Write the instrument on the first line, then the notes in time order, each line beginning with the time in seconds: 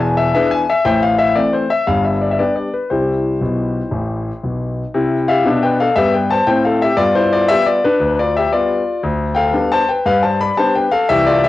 grand piano
Already playing: E1 E2
0.00 G#5
0.17 E5
0.34 E3 B3 D4 G#4 B4 E5
0.51 G#5
0.69 E5
0.85 A1 A2 C5 E5 G5
1.03 F5
1.19 E5
1.36 E3 A3 C4 D5
1.53 C5
1.70 E5
1.87 G1 G2 F5
2.05 E5
2.22 D5
2.31 E5
2.39 G3 B3 D4 G4 B4 D5
2.56 D5
2.74 B4
2.90 C2 C3 E4 G4 C5
3.41 B1 B2
3.91 A1 A2
4.43 B1 B2
4.94 C3 E4
5.28 G4 E5 F5
5.45 B2 D4
5.63 B4 G5
5.80 A4 F5
5.96 G2 B3 G4 E5
6.14 B4 G5
6.31 C5 A5
6.47 A2 C4 C5 G5
6.65 A4 F5
6.82 G4 E5
6.97 G2 B3 F4 D5
7.15 E4 C5
7.33 F4 D5
7.48 G3 B3 F4 G4 E5
7.66 F4 D5
7.84 D4 B4
8.00 D2
8.19 F4 D5
8.36 G4 E5
8.52 G3 B3 F4 D5
9.03 D2
9.35 A4 F5 G5
9.53 G3 B3 D4
9.72 C5 A5
9.89 B4 G5
10.06 G2 B4 F5
10.23 C5 A5
10.41 D5 B5
10.57 G3 B3 D4 C5 A5
10.75 B4 G5
10.91 A4 F5
11.09 C2 E3 G4 E5
11.27 F4 D5
11.44 E5